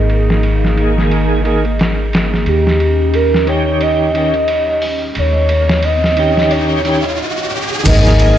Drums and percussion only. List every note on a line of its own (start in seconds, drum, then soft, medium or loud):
0.10 ride medium
0.30 snare soft
0.43 ride medium
0.65 snare soft
0.77 ride medium
0.98 snare soft
1.11 ride medium
1.45 ride medium
1.65 ride soft
1.79 snare medium
1.79 ride medium
2.13 snare medium
2.13 ride medium
2.34 snare soft
2.46 ride medium
2.67 snare soft
2.80 ride medium
3.14 ride medium
3.34 snare soft
3.47 ride medium
3.81 ride medium
4.15 ride medium
4.34 ride soft
4.48 ride medium
4.82 open hi-hat medium
5.15 ride medium
5.49 ride medium
5.69 snare medium
5.83 ride medium
6.04 snare soft
6.17 ride medium
6.37 snare soft
6.51 ride medium
6.85 ride medium
7.04 ride soft
7.85 kick loud
7.85 crash medium
7.85 ride medium
7.85 maracas medium
8.05 snare soft
8.05 maracas soft
8.19 ride medium